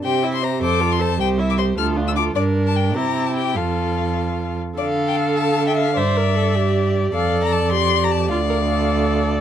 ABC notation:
X:1
M:6/8
L:1/16
Q:3/8=103
K:F
V:1 name="Violin"
g3 c' b2 d'3 c' a2 | g3 d' c'2 f'3 e' d'2 | d3 a g2 b3 a g2 | f8- f2 z2 |
[K:Dm] d3 g f2 a3 g f2 | e8- e2 z2 | f3 b a2 c'3 b a2 | f8- f2 z2 |]
V:2 name="Violin"
c2 e2 c2 c2 A2 c2 | c2 e2 c2 A2 F2 A2 | B6 G6 | A8- A2 z2 |
[K:Dm] f6 f3 e3 | d12 | d12 | d12 |]
V:3 name="Viola"
G2 E2 G2 A2 F2 A2 | G2 E2 G2 F2 D2 F2 | D6 E6 | F8- F2 z2 |
[K:Dm] A12 | c2 B2 A2 G6 | A6 G6 | F2 B2 A8 |]
V:4 name="Cello" clef=bass
C,6 F,,6 | C,,6 D,,6 | G,,6 C,6 | F,,8- F,,2 z2 |
[K:Dm] D,12 | G,,12 | F,,12 | D,,12 |]